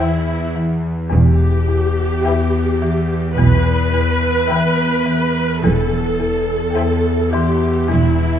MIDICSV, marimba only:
0, 0, Header, 1, 2, 480
1, 0, Start_track
1, 0, Key_signature, 1, "minor"
1, 0, Tempo, 1132075
1, 471, Time_signature, 4, 2, 24, 8
1, 3559, End_track
2, 0, Start_track
2, 0, Title_t, "Marimba"
2, 0, Program_c, 0, 12
2, 0, Note_on_c, 0, 52, 36
2, 141, Note_off_c, 0, 52, 0
2, 235, Note_on_c, 0, 52, 33
2, 378, Note_off_c, 0, 52, 0
2, 467, Note_on_c, 0, 40, 51
2, 612, Note_off_c, 0, 40, 0
2, 713, Note_on_c, 0, 40, 34
2, 856, Note_off_c, 0, 40, 0
2, 955, Note_on_c, 0, 40, 35
2, 1098, Note_off_c, 0, 40, 0
2, 1196, Note_on_c, 0, 52, 35
2, 1339, Note_off_c, 0, 52, 0
2, 1430, Note_on_c, 0, 40, 49
2, 1574, Note_off_c, 0, 40, 0
2, 1672, Note_on_c, 0, 40, 35
2, 1816, Note_off_c, 0, 40, 0
2, 1911, Note_on_c, 0, 52, 35
2, 2055, Note_off_c, 0, 52, 0
2, 2145, Note_on_c, 0, 52, 35
2, 2291, Note_off_c, 0, 52, 0
2, 2389, Note_on_c, 0, 40, 49
2, 2534, Note_off_c, 0, 40, 0
2, 2625, Note_on_c, 0, 40, 35
2, 2771, Note_off_c, 0, 40, 0
2, 2866, Note_on_c, 0, 40, 39
2, 3011, Note_off_c, 0, 40, 0
2, 3107, Note_on_c, 0, 52, 38
2, 3252, Note_off_c, 0, 52, 0
2, 3344, Note_on_c, 0, 40, 51
2, 3490, Note_off_c, 0, 40, 0
2, 3559, End_track
0, 0, End_of_file